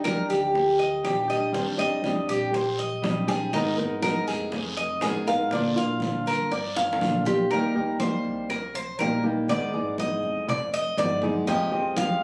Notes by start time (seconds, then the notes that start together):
Already playing: D#2
0.04 D#3 G3 D4 G4 A#4, high bongo, high conga, short guiro
0.30 D2 G4, high conga, short guiro
0.54 muted nylon-string guitar stroke, high bongo, high conga, long guiro
0.79 D#5, high conga
1.02 A#1 D#3 G3 D4 G4, high bongo, low bongo, high conga, short guiro
1.28 G3 D4 G4 D#5, high conga, short guiro
1.52 D#2 D#3 G3 C4 D4 G4 C5, high bongo, high conga, long guiro
1.78 D#2 G3 C4 D4 G4 D#5, high bongo, high conga
2.03 G3 C4 D4 G4, high bongo, high conga, short guiro
2.29 A#1 G4, high bongo, high conga, short guiro
2.53 C5, muted nylon-string guitar stroke, high bongo, high conga, long guiro
2.79 D#5, high conga
3.02 A#1 G3 C4 D4 G4, high bongo, low bongo, high conga, short guiro
3.27 G3 C4 D4 G4 G#4, high conga, short guiro
3.53 G#1 D#3 G#3 B3 D#4 A#4, high bongo, high conga, long guiro
3.78 G#1 G#3 B3 D#4 A#4, high conga
4.02 G#3 B3 D#4 A#4, high bongo, high conga, short guiro
4.27 F1 G#4, high conga, short guiro
4.52 muted nylon-string guitar stroke, high bongo, high conga, long guiro
4.77 D#5, high conga
5.01 A1 G#3 B3 D#4 G#4 A#4, high bongo, low bongo, high conga, short guiro
5.26 G#3 B3 D#4 A#4 F5, high conga, short guiro
5.51 A#1 D3 A#3 D4 F4 D5, high bongo, high conga, long guiro
5.75 A#1 A#3 D4 F4 F5, high conga
6.00 D3 A#3 D4 F4, high bongo, high conga, short guiro
6.26 G1 A#4, high bongo, high conga, short guiro
6.51 D5, muted nylon-string guitar stroke, high bongo, high conga, long guiro
6.76 F5, high bongo, high conga
6.93 high bongo
7.01 A#1 D3 A#3 D4 F4, high conga, short guiro
7.10 low bongo
7.25 A#3 D4 F4 G4, low bongo, high conga, short guiro
7.50 D#2 D#3 G3 A#3 D#4 G4 A#4, high bongo, high conga
7.75 D#2 G3 A#3 D#4 G4, high conga
8.00 G3 A#3 D#4 G4 C5, high bongo, high conga
8.24 C2, high conga
8.50 A#4, muted nylon-string guitar stroke, high bongo, high conga
8.74 C5, high conga
8.99 A#1 G3 A#3 D#4 G4 A#4, high bongo, low bongo, high conga
9.23 G3 A#3 D#4 G4, high conga
9.48 G#1 D#3 G#3 B3 D#4 G#4 D5, high bongo, high conga
9.73 G#1 G#3 B3 D#4 G#4, high bongo, high conga
9.98 G#3 B3 D#4 G#4 D#5, high bongo, high conga
10.23 F1, high bongo, high conga
10.48 D5, muted nylon-string guitar stroke, high bongo, high conga, low conga
10.73 D#5, high conga
10.97 G1 G#3 B3 D#4 G#4 D5, high bongo, low bongo, high conga
11.22 G#3 B3 D#4 G#4, high bongo, high conga
11.47 F1 C3 F3 G#3 C4 G4 D#5, high bongo, high conga
11.72 F1 F3 G#3 C4 G4, high conga
11.97 F3 G#3 C4 G4 F5, high bongo, high conga